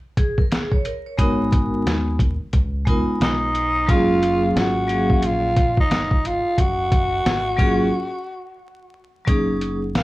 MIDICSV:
0, 0, Header, 1, 6, 480
1, 0, Start_track
1, 0, Key_signature, 6, "major"
1, 0, Tempo, 674157
1, 844, Time_signature, 4, 2, 24, 8
1, 7141, End_track
2, 0, Start_track
2, 0, Title_t, "Tenor saxophone"
2, 0, Program_c, 0, 66
2, 2299, Note_on_c, 0, 63, 101
2, 2778, Note_on_c, 0, 65, 117
2, 2788, Note_off_c, 0, 63, 0
2, 3217, Note_off_c, 0, 65, 0
2, 3217, Note_on_c, 0, 65, 79
2, 3265, Note_on_c, 0, 66, 112
2, 3276, Note_off_c, 0, 65, 0
2, 3743, Note_on_c, 0, 65, 115
2, 3754, Note_off_c, 0, 66, 0
2, 4122, Note_off_c, 0, 65, 0
2, 4131, Note_on_c, 0, 63, 98
2, 4464, Note_on_c, 0, 65, 98
2, 4474, Note_off_c, 0, 63, 0
2, 4702, Note_on_c, 0, 66, 116
2, 4712, Note_off_c, 0, 65, 0
2, 6133, Note_off_c, 0, 66, 0
2, 7096, Note_on_c, 0, 58, 86
2, 7141, Note_off_c, 0, 58, 0
2, 7141, End_track
3, 0, Start_track
3, 0, Title_t, "Vibraphone"
3, 0, Program_c, 1, 11
3, 124, Note_on_c, 1, 68, 65
3, 265, Note_off_c, 1, 68, 0
3, 268, Note_on_c, 1, 70, 61
3, 358, Note_off_c, 1, 70, 0
3, 362, Note_on_c, 1, 68, 67
3, 504, Note_off_c, 1, 68, 0
3, 514, Note_on_c, 1, 73, 63
3, 601, Note_off_c, 1, 73, 0
3, 608, Note_on_c, 1, 70, 69
3, 747, Note_off_c, 1, 70, 0
3, 757, Note_on_c, 1, 73, 60
3, 835, Note_on_c, 1, 56, 78
3, 841, Note_on_c, 1, 59, 75
3, 847, Note_on_c, 1, 63, 79
3, 854, Note_on_c, 1, 66, 76
3, 861, Note_on_c, 1, 70, 91
3, 983, Note_off_c, 1, 73, 0
3, 1523, Note_off_c, 1, 56, 0
3, 1526, Note_off_c, 1, 59, 0
3, 1529, Note_off_c, 1, 63, 0
3, 1532, Note_off_c, 1, 66, 0
3, 1536, Note_off_c, 1, 70, 0
3, 2032, Note_on_c, 1, 56, 80
3, 2040, Note_on_c, 1, 59, 69
3, 2047, Note_on_c, 1, 63, 74
3, 2052, Note_on_c, 1, 65, 70
3, 2057, Note_on_c, 1, 70, 87
3, 2338, Note_off_c, 1, 56, 0
3, 2342, Note_off_c, 1, 59, 0
3, 2345, Note_off_c, 1, 63, 0
3, 2348, Note_off_c, 1, 65, 0
3, 2350, Note_off_c, 1, 70, 0
3, 2754, Note_on_c, 1, 54, 81
3, 2758, Note_on_c, 1, 56, 57
3, 2766, Note_on_c, 1, 61, 72
3, 2771, Note_on_c, 1, 65, 74
3, 2778, Note_on_c, 1, 68, 81
3, 2806, Note_on_c, 1, 58, 73
3, 2819, Note_off_c, 1, 56, 0
3, 3442, Note_off_c, 1, 54, 0
3, 3448, Note_off_c, 1, 61, 0
3, 3451, Note_off_c, 1, 65, 0
3, 3455, Note_off_c, 1, 68, 0
3, 3469, Note_off_c, 1, 58, 0
3, 3471, Note_on_c, 1, 54, 62
3, 3477, Note_on_c, 1, 58, 62
3, 3484, Note_on_c, 1, 61, 56
3, 3490, Note_on_c, 1, 77, 63
3, 3497, Note_on_c, 1, 68, 69
3, 3836, Note_off_c, 1, 54, 0
3, 3839, Note_off_c, 1, 58, 0
3, 3843, Note_off_c, 1, 61, 0
3, 3845, Note_off_c, 1, 77, 0
3, 3849, Note_off_c, 1, 68, 0
3, 5387, Note_on_c, 1, 54, 84
3, 5393, Note_on_c, 1, 58, 79
3, 5401, Note_on_c, 1, 61, 78
3, 5406, Note_on_c, 1, 65, 75
3, 5413, Note_on_c, 1, 68, 96
3, 5580, Note_off_c, 1, 54, 0
3, 5583, Note_off_c, 1, 58, 0
3, 5587, Note_off_c, 1, 61, 0
3, 5590, Note_off_c, 1, 65, 0
3, 5593, Note_off_c, 1, 68, 0
3, 6587, Note_on_c, 1, 54, 69
3, 6595, Note_on_c, 1, 58, 66
3, 6598, Note_on_c, 1, 61, 67
3, 6605, Note_on_c, 1, 63, 71
3, 6614, Note_on_c, 1, 68, 80
3, 6954, Note_off_c, 1, 54, 0
3, 6958, Note_off_c, 1, 58, 0
3, 6960, Note_off_c, 1, 61, 0
3, 6963, Note_off_c, 1, 63, 0
3, 6968, Note_off_c, 1, 68, 0
3, 7141, End_track
4, 0, Start_track
4, 0, Title_t, "Fingered electric bass"
4, 0, Program_c, 2, 33
4, 843, Note_on_c, 2, 32, 105
4, 1300, Note_off_c, 2, 32, 0
4, 1321, Note_on_c, 2, 39, 95
4, 1691, Note_off_c, 2, 39, 0
4, 1803, Note_on_c, 2, 37, 99
4, 2172, Note_off_c, 2, 37, 0
4, 2280, Note_on_c, 2, 35, 82
4, 2738, Note_off_c, 2, 35, 0
4, 2766, Note_on_c, 2, 30, 102
4, 3221, Note_off_c, 2, 30, 0
4, 3243, Note_on_c, 2, 32, 100
4, 3612, Note_off_c, 2, 32, 0
4, 3721, Note_on_c, 2, 34, 97
4, 4091, Note_off_c, 2, 34, 0
4, 4203, Note_on_c, 2, 31, 88
4, 4572, Note_off_c, 2, 31, 0
4, 4683, Note_on_c, 2, 30, 109
4, 5140, Note_off_c, 2, 30, 0
4, 5162, Note_on_c, 2, 32, 96
4, 5619, Note_off_c, 2, 32, 0
4, 6603, Note_on_c, 2, 30, 91
4, 7060, Note_off_c, 2, 30, 0
4, 7082, Note_on_c, 2, 34, 83
4, 7141, Note_off_c, 2, 34, 0
4, 7141, End_track
5, 0, Start_track
5, 0, Title_t, "Muted fingered electric bass strokes"
5, 1711, Note_on_c, 9, 29, 46
5, 1782, Note_off_c, 9, 29, 0
5, 2187, Note_on_c, 9, 29, 44
5, 2258, Note_off_c, 9, 29, 0
5, 3631, Note_on_c, 9, 29, 48
5, 3702, Note_off_c, 9, 29, 0
5, 4592, Note_on_c, 9, 29, 43
5, 4663, Note_off_c, 9, 29, 0
5, 7141, End_track
6, 0, Start_track
6, 0, Title_t, "Drums"
6, 122, Note_on_c, 9, 36, 87
6, 123, Note_on_c, 9, 42, 71
6, 193, Note_off_c, 9, 36, 0
6, 194, Note_off_c, 9, 42, 0
6, 269, Note_on_c, 9, 36, 86
6, 340, Note_off_c, 9, 36, 0
6, 367, Note_on_c, 9, 42, 86
6, 372, Note_on_c, 9, 38, 120
6, 438, Note_off_c, 9, 42, 0
6, 443, Note_off_c, 9, 38, 0
6, 509, Note_on_c, 9, 36, 89
6, 580, Note_off_c, 9, 36, 0
6, 606, Note_on_c, 9, 42, 78
6, 677, Note_off_c, 9, 42, 0
6, 844, Note_on_c, 9, 36, 98
6, 846, Note_on_c, 9, 42, 88
6, 915, Note_off_c, 9, 36, 0
6, 917, Note_off_c, 9, 42, 0
6, 1085, Note_on_c, 9, 36, 100
6, 1087, Note_on_c, 9, 42, 76
6, 1157, Note_off_c, 9, 36, 0
6, 1158, Note_off_c, 9, 42, 0
6, 1330, Note_on_c, 9, 42, 81
6, 1331, Note_on_c, 9, 38, 124
6, 1401, Note_off_c, 9, 42, 0
6, 1402, Note_off_c, 9, 38, 0
6, 1560, Note_on_c, 9, 36, 103
6, 1565, Note_on_c, 9, 42, 65
6, 1631, Note_off_c, 9, 36, 0
6, 1637, Note_off_c, 9, 42, 0
6, 1801, Note_on_c, 9, 42, 85
6, 1803, Note_on_c, 9, 36, 85
6, 1872, Note_off_c, 9, 42, 0
6, 1875, Note_off_c, 9, 36, 0
6, 2043, Note_on_c, 9, 36, 94
6, 2044, Note_on_c, 9, 42, 70
6, 2114, Note_off_c, 9, 36, 0
6, 2115, Note_off_c, 9, 42, 0
6, 2287, Note_on_c, 9, 42, 85
6, 2292, Note_on_c, 9, 38, 124
6, 2358, Note_off_c, 9, 42, 0
6, 2363, Note_off_c, 9, 38, 0
6, 2527, Note_on_c, 9, 42, 78
6, 2598, Note_off_c, 9, 42, 0
6, 2766, Note_on_c, 9, 36, 97
6, 2768, Note_on_c, 9, 42, 96
6, 2837, Note_off_c, 9, 36, 0
6, 2839, Note_off_c, 9, 42, 0
6, 3009, Note_on_c, 9, 42, 79
6, 3080, Note_off_c, 9, 42, 0
6, 3251, Note_on_c, 9, 42, 79
6, 3253, Note_on_c, 9, 38, 123
6, 3323, Note_off_c, 9, 42, 0
6, 3324, Note_off_c, 9, 38, 0
6, 3484, Note_on_c, 9, 42, 69
6, 3556, Note_off_c, 9, 42, 0
6, 3630, Note_on_c, 9, 36, 93
6, 3702, Note_off_c, 9, 36, 0
6, 3720, Note_on_c, 9, 42, 90
6, 3792, Note_off_c, 9, 42, 0
6, 3962, Note_on_c, 9, 42, 67
6, 3963, Note_on_c, 9, 36, 92
6, 4033, Note_off_c, 9, 42, 0
6, 4034, Note_off_c, 9, 36, 0
6, 4110, Note_on_c, 9, 36, 90
6, 4181, Note_off_c, 9, 36, 0
6, 4207, Note_on_c, 9, 42, 83
6, 4212, Note_on_c, 9, 38, 121
6, 4278, Note_off_c, 9, 42, 0
6, 4284, Note_off_c, 9, 38, 0
6, 4351, Note_on_c, 9, 36, 91
6, 4422, Note_off_c, 9, 36, 0
6, 4450, Note_on_c, 9, 42, 82
6, 4521, Note_off_c, 9, 42, 0
6, 4685, Note_on_c, 9, 36, 97
6, 4687, Note_on_c, 9, 42, 93
6, 4756, Note_off_c, 9, 36, 0
6, 4758, Note_off_c, 9, 42, 0
6, 4925, Note_on_c, 9, 36, 104
6, 4927, Note_on_c, 9, 42, 75
6, 4997, Note_off_c, 9, 36, 0
6, 4998, Note_off_c, 9, 42, 0
6, 5170, Note_on_c, 9, 42, 82
6, 5171, Note_on_c, 9, 38, 118
6, 5241, Note_off_c, 9, 42, 0
6, 5242, Note_off_c, 9, 38, 0
6, 5400, Note_on_c, 9, 36, 101
6, 5404, Note_on_c, 9, 42, 66
6, 5471, Note_off_c, 9, 36, 0
6, 5475, Note_off_c, 9, 42, 0
6, 6603, Note_on_c, 9, 36, 99
6, 6603, Note_on_c, 9, 42, 90
6, 6674, Note_off_c, 9, 36, 0
6, 6675, Note_off_c, 9, 42, 0
6, 6844, Note_on_c, 9, 42, 73
6, 6916, Note_off_c, 9, 42, 0
6, 7085, Note_on_c, 9, 42, 79
6, 7087, Note_on_c, 9, 38, 118
6, 7141, Note_off_c, 9, 38, 0
6, 7141, Note_off_c, 9, 42, 0
6, 7141, End_track
0, 0, End_of_file